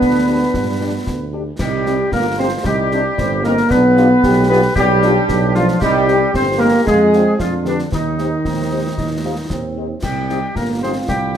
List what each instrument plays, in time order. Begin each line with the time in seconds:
Already playing: trombone section B3, euphonium D4, woodwind section B4, trumpet section B4
0.01 tuba D2, concert bass drum, snare
0.28 french horn section D4 G4
0.54 tuba G2, concert bass drum, snare
0.81 french horn section D4 G4
1.07 tuba D2, concert bass drum, snare
1.33 french horn section D4 G4
1.59 tuba C2, trombone section G3, euphonium D#4, trumpet section G4, woodwind section G4, concert bass drum, snare, crash
1.86 french horn section C4 D#4 G4, euphonium G4, snare
2.12 tuba G1, trombone section A#3, euphonium F4, trumpet section A#4, woodwind section A#4, concert bass drum, snare
2.38 trombone section C4, french horn section C4 D#4 G4, trumpet section C5, woodwind section C5
2.62 tuba C2, trombone section G3, euphonium D#4, woodwind section G4, trumpet section G4, concert bass drum, snare
2.91 french horn section C4 D#4 G4, euphonium D4, snare
3.18 tuba G1, euphonium C4, concert bass drum, snare
3.43 trombone section A#3, french horn section C4 D#4 G4, euphonium D#4, trumpet section A#4, woodwind section A#4, snare
3.57 snare
3.70 tuba B1, trombone section B3, euphonium D4, woodwind section B4, trumpet section B4, concert bass drum, snare
3.97 french horn section D4 F4 G4, euphonium F4, snare
4.23 tuba B1, euphonium G4, concert bass drum, snare
4.49 trombone section B3, french horn section D4 F4 G4, woodwind section B4, trumpet section B4
4.75 tuba B1, trombone section G3, euphonium B3, woodwind section G4, trumpet section G4, concert bass drum, snare
5.02 french horn section D4 F4 G4, euphonium D4, snare
5.29 tuba B1, concert bass drum, snare
5.55 trombone section F3, french horn section D4 F4 G4, woodwind section F4, trumpet section F4, snare
5.68 snare
5.81 tuba C2, trombone section G3, euphonium D#4, woodwind section G4, trumpet section G4, concert bass drum, snare, crash
6.07 french horn section C4 D#4 G4, euphonium G4, snare
6.34 tuba G1, trombone section C4, trumpet section C5, woodwind section C5, concert bass drum, snare
6.58 trombone section A#3, french horn section C4 D#4 G4, woodwind section A#4, trumpet section A#4
6.85 tuba F2, trombone section G#3, euphonium F4, woodwind section G#4, trumpet section G#4, concert bass drum, snare
7.13 euphonium C4, french horn section D4 F4, snare
7.37 tuba F2, trombone section F3, euphonium D4, trumpet section F4, woodwind section F4, concert bass drum, snare
7.64 trombone section D3, french horn section D4 G4 B4, trumpet section D4, woodwind section D4, snare
7.79 snare
7.90 tuba D#2, trombone section D#3, trumpet section D#4, euphonium D#4, woodwind section D#4, concert bass drum, snare
8.19 french horn section D#4 G4 C5, snare
8.45 tuba D#2, euphonium C4, concert bass drum, snare
8.71 french horn section D#4 G4 C5
8.97 tuba D#2, euphonium D#4, concert bass drum, snare
9.24 french horn section D#4 G4 C5, euphonium F4
9.50 tuba D#2, euphonium C4, concert bass drum, snare
9.77 french horn section D#4 G4 C5
10.03 tuba C2, trombone section G3, woodwind section G4, piccolo G5, concert bass drum, snare, crash
10.29 french horn section C4 D#4 G4, trumpet section D#5, snare
10.55 tuba G1, trombone section A#3, euphonium F4, woodwind section A#4, piccolo A#5, concert bass drum, snare
10.82 trombone section C4, french horn section C4 D#4 G4, woodwind section C5, trumpet section D#5, piccolo C6
11.08 tuba C2, trombone section G3, woodwind section G4, piccolo G5, concert bass drum, snare